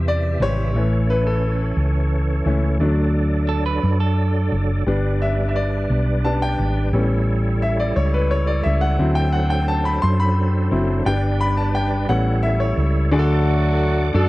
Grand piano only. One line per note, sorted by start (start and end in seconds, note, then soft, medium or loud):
0.00 0.71 C3 medium
0.00 0.40 E3 soft
0.00 0.40 G3 soft
0.00 0.42 C5 medium
0.08 0.39 D5 medium
0.41 0.71 E3 soft
0.41 0.72 G3 soft
0.41 0.72 C5 medium
0.41 1.06 C#5 medium
0.76 2.45 E3 soft
0.76 2.45 A3 soft
0.76 2.45 C#4 soft
1.10 1.15 B4 medium
1.27 2.25 A4 medium
2.46 2.77 E3 soft
2.46 2.77 A3 soft
2.46 2.77 C#4 medium
2.80 3.79 F#3 soft
2.80 3.80 A3 soft
2.80 3.80 D4 medium
4.87 5.32 G3 soft
4.87 5.33 B3 soft
4.87 5.33 D4 medium
5.22 5.47 E5 medium
5.49 5.56 E5 medium
5.56 6.21 D5 medium
6.24 6.55 G3 soft
6.24 6.56 B3 soft
6.24 6.56 D4 soft
6.24 6.42 A5 medium
6.42 7.41 G5 medium
6.93 7.39 G3 medium
6.93 7.39 B3 soft
6.93 7.40 C#4 medium
7.62 7.80 E5 medium
7.80 7.97 D5 medium
7.96 8.01 C#5 medium
8.14 8.31 B4 medium
8.31 8.47 C#5 medium
8.47 8.65 D5 medium
8.64 8.82 E5 medium
8.81 9.17 F#5 medium
8.98 9.98 F#3 medium
8.98 9.98 C4 soft
8.98 9.99 E4 medium
9.15 9.32 G5 medium
9.33 9.49 F#5 medium
9.50 9.68 G5 medium
9.68 9.86 A5 medium
9.85 10.03 B5 medium
10.02 10.20 C6 loud
10.20 10.85 B5 medium
10.71 11.02 F#3 soft
10.71 11.03 C4 soft
10.71 11.03 E4 soft
11.06 11.52 G3 medium
11.06 11.52 B3 soft
11.06 11.52 D4 medium
11.06 11.41 G5 medium
11.41 11.46 B5 medium
11.57 11.75 A5 medium
11.75 12.10 G5 medium
12.09 13.08 G3 medium
12.09 13.08 B3 soft
12.09 13.08 C#4 medium
12.09 12.41 F#5 medium
12.43 12.61 E5 medium
12.60 12.92 C#5 medium
13.11 14.11 D3 medium
13.11 13.87 D4 medium
13.11 13.88 F#4 medium
13.11 13.19 G#4 medium
13.19 13.91 A4 medium
14.14 14.29 D4 medium
14.14 14.29 F#4 medium
14.14 14.29 A4 medium